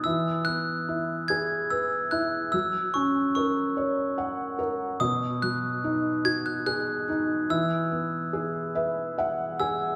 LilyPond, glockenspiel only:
\new Staff \with { instrumentName = "Glockenspiel" } { \time 3/4 \key e \major \tempo 4 = 72 e'''8 fis'''4 gis'''8 e'''8 fis'''8 | e'''8 cis'''8 cis'''4 r4 | dis'''8 fis'''4 gis'''16 fis'''16 fis'''4 | e'''2 r8 e'''8 | }